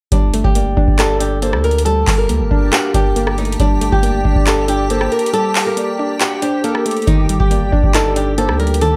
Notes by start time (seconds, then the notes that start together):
0.12 G1 G3 D4 G4 G5 A5 D6, kick, closed hi-hat
0.34 A3, closed hi-hat
0.44 G1 G4, kick
0.55 A#3 D5, closed hi-hat
0.77 G1 D4, kick
0.88 G1, kick
0.99 G4 A4, cross-stick, clap, closed hi-hat
1.20 D4 G4, closed hi-hat
1.42 A#3 A4 C5, closed hi-hat
1.53 D2, cross-stick
1.64 A#4, closed hi-hat
1.71 closed hi-hat
1.78 closed hi-hat
1.85 G3 A4, closed hi-hat
2.07 G1, kick, clap, open hi-hat
2.18 A#4
2.29 D2 A#3 A#4, closed hi-hat
2.40 G1
2.51 G1 D4, kick
2.72 F#4 G4, cross-stick, clap, closed hi-hat
2.94 G1 D4 G4, kick, closed hi-hat
3.16 A#3, closed hi-hat
3.27 cross-stick
3.38 A3 D#4, closed hi-hat
3.45 closed hi-hat
3.52 closed hi-hat
3.60 G1 G3 D4 A5, kick, closed hi-hat
3.81 A3, closed hi-hat
3.92 G1 G4, kick
4.03 A#3 D5, closed hi-hat
4.25 G1 D4, kick
4.36 G1, kick
4.46 G4 A4, cross-stick, clap, closed hi-hat
4.68 D4 G4, closed hi-hat
4.90 A#3 A4 C5, closed hi-hat
5.01 cross-stick
5.12 A#4, closed hi-hat
5.19 closed hi-hat
5.26 closed hi-hat
5.33 G3 A4, closed hi-hat
5.55 clap, open hi-hat
5.67 A#4
5.77 A#3 D5, closed hi-hat
5.99 D4
6.20 F#4 G4, clap, closed hi-hat
6.42 D4 G4 C5, closed hi-hat
6.64 A#3 A4 A#4, closed hi-hat
6.75 cross-stick
6.86 A3 A4, closed hi-hat
6.91 closed hi-hat
6.97 closed hi-hat
7.02 closed hi-hat
7.07 G1 D#3 D#4, kick, closed hi-hat
7.29 G3, closed hi-hat
7.40 G1 G4, kick
7.51 A#3 D5, closed hi-hat
7.72 G1 D4, kick
7.84 G1, kick
7.94 D#4 A4, cross-stick, clap, closed hi-hat
8.16 D4 G4, closed hi-hat
8.38 A#3 A4 C5, closed hi-hat
8.49 D2, cross-stick
8.60 G3 A#4, closed hi-hat
8.67 closed hi-hat
8.74 closed hi-hat
8.81 D#3 A4, closed hi-hat